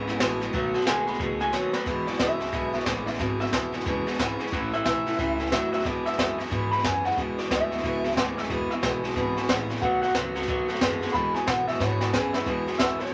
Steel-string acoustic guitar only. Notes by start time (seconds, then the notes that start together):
0.07 E3 G#3 B3 E4
0.19 E2 B2 E3 G#3 B3 E4
0.40 E3 G#3 B3 E4
0.53 B2 D#3 A3 B3 F#4
0.74 A3 B3 F#4
0.86 B2 D#3 A3 B3 F#4
1.07 A3 B3 F#4
1.19 D#3 A3 B3 F#4
1.40 A3 B3 F#4
1.52 B2 D#3 A3 B3 F#4
1.73 A3 B3 F#4
1.85 E2 B2 E3 G#3 B3 E4
2.06 E3 G#3 B3 E4
2.18 E3 G#3 B3 E4
2.39 E3 G#3 B3 E4
2.52 E2 B2 E3 G#3 B3 E4
2.73 E3 G#3 B3 E4
2.85 E3 G#3 B3 E4
3.06 E3 G#3 B3 E4
3.18 E2 B2 E3 G#3 B3 E4
3.39 E3 G#3 B3 E4
3.51 E3 G#3 B3 E4
3.72 E3 G#3 B3 E4
3.85 E2 B2 E3 G#3 B3 E4
4.06 E3 G#3 B3 E4
4.18 E3 G#3 B3 E4
4.39 E3 G#3 B3 E4
4.51 A2 E3 A3 C#4 E4
4.72 A3 C#4 E4
4.85 E3 A3 C#4 E4
5.05 A3 C#4 E4
5.18 A2 E3 A3 C#4 E4
5.38 A3 C#4 E4
5.51 E3 A3 C#4 E4
5.72 A3 C#4 E4
5.84 E2 B2 E3 G#3 B3 E4
6.05 E3 G#3 B3 E4
6.18 E3 G#3 B3 E4
6.38 E3 G#3 B3 E4
6.50 E2 B2 E3 G#3 B3 E4
6.72 E3 G#3 B3 E4
6.84 E3 G#3 B3 E4
7.05 E3 G#3 B3 E4
7.17 E2 B2 E3 G#3 B3 E4
7.38 E3 G#3 B3 E4
7.50 E3 G#3 B3 E4
7.71 E3 G#3 B3 E4
7.84 E2 B2 E3 G#3 B3 E4
8.04 E3 G#3 B3 E4
8.16 E3 G#3 B3 E4
8.38 E3 G#3 B3 E4
8.50 E2 B2 E3 G#3 B3 E4
8.70 E3 G#3 B3 E4
8.82 E3 G#3 B3 E4
9.04 E3 G#3 B3 E4
9.16 E2 B2 E3 G#3 B3 E4
9.36 E3 G#3 B3 E4
9.47 E3 G#3 B3 E4
9.69 E3 G#3 B3 E4
9.81 B2 D#3 A3 B3 F#4
10.02 A3 B3 F#4
10.14 D#3 A3 B3 F#4
10.35 A3 B3 F#4
10.47 B2 D#3 A3 B3 F#4
10.68 A3 B3 F#4
10.80 D#3 A3 B3 F#4
11.01 A3 B3 F#4
11.14 E2 B2 E3 G#3 B3 E4
11.34 E3 G#3 B3 E4
11.47 E3 G#3 B3 E4
11.68 E3 G#3 B3 E4
11.80 E2 B2 E3 G#3 B3 E4
12.01 E3 G#3 B3 E4
12.13 E3 G#3 B3 E4
12.34 E3 G#3 B3 E4
12.46 E2 B2 E3 G#3 B3 E4
12.66 E3 G#3 B3 E4
12.79 E3 G#3 B3 E4
13.00 E3 G#3 B3 E4